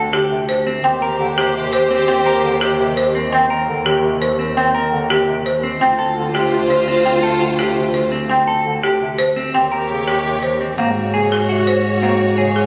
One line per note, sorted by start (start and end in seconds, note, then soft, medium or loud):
0.00 0.73 D2 medium
0.13 0.36 G4 medium
0.13 0.36 G4 loud
0.31 0.45 C3 medium
0.49 0.72 C5 medium
0.67 0.90 C4 medium
0.84 5.70 D#2 medium
0.84 0.98 C4 loud
0.84 0.96 G4 medium
0.84 3.11 G4 medium
0.84 3.11 C5 medium
0.84 1.07 G5 loud
1.01 1.14 G4 medium
1.01 1.25 A#4 loud
1.20 1.33 D3 loud
1.20 1.32 G4 medium
1.37 1.50 G4 medium
1.37 1.61 G4 medium
1.37 1.61 G4 loud
1.54 1.69 C3 medium
1.54 1.67 G4 medium
1.73 1.85 G4 loud
1.73 1.96 C5 medium
1.90 2.14 C4 medium
1.90 2.03 G4 loud
2.08 2.22 C4 loud
2.08 2.21 G4 loud
2.08 2.31 G5 loud
2.26 2.39 G4 medium
2.26 2.49 A#4 loud
2.44 2.57 D3 medium
2.44 2.56 G4 medium
2.61 2.85 G4 loud
2.61 2.85 G4 medium
2.61 2.74 G4 medium
2.79 2.93 C3 loud
2.79 2.92 G4 medium
2.97 3.10 G4 soft
2.97 3.20 C5 medium
3.15 3.38 C4 medium
3.32 3.46 C4 loud
3.32 3.56 G5 loud
3.50 3.74 A#4 loud
3.68 3.81 D3 loud
3.86 4.09 G4 medium
3.86 4.09 G4 loud
4.04 4.17 C3 medium
4.22 4.45 C5 medium
4.39 4.62 C4 medium
4.57 4.70 C4 loud
4.57 4.80 G5 loud
4.75 4.98 A#4 loud
4.92 5.06 D3 loud
5.10 5.33 G4 medium
5.10 5.33 G4 loud
5.28 5.41 C3 medium
5.46 5.69 C5 medium
5.63 5.87 C4 medium
5.81 9.43 D2 medium
5.81 5.95 C4 loud
5.81 5.93 F4 soft
5.81 8.08 F4 medium
5.81 8.09 C5 medium
5.81 6.04 G5 loud
5.99 6.12 F4 medium
5.99 6.22 A4 loud
6.17 6.30 D3 medium
6.17 6.29 F4 medium
6.34 6.47 F4 medium
6.34 6.58 G4 medium
6.34 6.58 G4 loud
6.52 6.66 C3 medium
6.52 6.65 F4 medium
6.70 6.83 F4 medium
6.70 6.93 C5 medium
6.88 7.11 C4 medium
6.88 7.00 F4 medium
7.05 7.19 C4 loud
7.05 7.18 F4 medium
7.05 7.29 G5 loud
7.23 7.36 F4 medium
7.23 7.46 A4 medium
7.41 7.54 D3 medium
7.41 7.53 F4 medium
7.59 7.71 F4 medium
7.59 7.82 G4 medium
7.76 7.90 C3 medium
7.76 7.89 F4 medium
7.94 8.06 F4 soft
7.94 8.17 C5 medium
8.12 8.35 C4 medium
8.29 8.43 C4 loud
8.29 8.53 G5 medium
8.48 8.71 A4 loud
8.66 8.79 D3 medium
8.83 9.06 G4 medium
8.83 9.06 G4 loud
9.01 9.14 C3 medium
9.19 9.42 C5 loud
9.36 9.59 C4 medium
9.54 10.67 D#2 medium
9.54 9.68 C4 loud
9.54 9.67 G4 medium
9.54 10.57 G4 medium
9.54 10.57 C#5 medium
9.54 9.77 G5 medium
9.72 9.85 G4 medium
9.72 9.95 A#4 medium
9.89 10.03 C#3 medium
9.89 10.02 G4 medium
10.07 10.20 G4 medium
10.07 10.31 G4 medium
10.25 10.38 C3 medium
10.25 10.38 G4 medium
10.42 10.55 G4 soft
10.42 10.66 C5 medium
10.61 10.77 C4 medium
10.78 12.66 G#2 medium
10.78 10.92 A#3 loud
10.78 11.01 C4 medium
10.78 12.66 F#4 medium
10.78 12.66 C#5 medium
10.78 11.01 F#5 medium
11.14 11.27 C#3 medium
11.14 11.37 G#4 medium
11.32 11.55 G#4 medium
11.49 11.63 C3 medium
11.49 11.72 F#4 medium
11.67 11.90 C5 medium
12.02 12.16 A#3 loud
12.02 12.26 C4 medium
12.02 12.26 F#5 medium
12.38 12.52 C#3 medium
12.38 12.61 G#4 medium
12.56 12.66 G#4 medium